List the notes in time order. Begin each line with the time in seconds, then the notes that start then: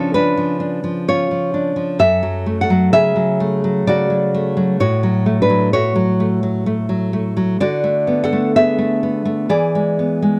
Already playing: C#3 F3 C#4 D4 A4
0.14 C#4 D4 B4
0.37 F3
0.60 D4
0.84 F3
1.08 C#4 F4 C#5
1.31 F3
1.54 D4
1.76 F3
1.99 F#2 A4 E5
2.23 F#3
2.46 A3
2.61 A4 F#5
2.70 F#3
2.93 C#3 G#4 E5
3.16 F#3
3.40 A3
3.64 F#3
3.87 C#3 F#4 D5
4.10 F#3
4.34 A3
4.57 F#3
4.80 A2 F#4 C#5
5.03 F#3
5.26 A3
5.42 D4 B4
5.50 F#3
5.73 A3 F#4 C#5
5.96 F#3
6.20 A3
6.43 F#3
6.66 A3
6.89 F#3
7.13 A3
7.37 F#3
7.60 D3 F#4 D5
7.84 A3
8.07 B3
8.24 A4 F#5
8.33 A3
8.56 B3 G#4 E5
8.78 A3
9.03 B3
9.25 A3
9.49 E3 G#4 D5
9.75 G#3
9.99 B3
10.22 G#3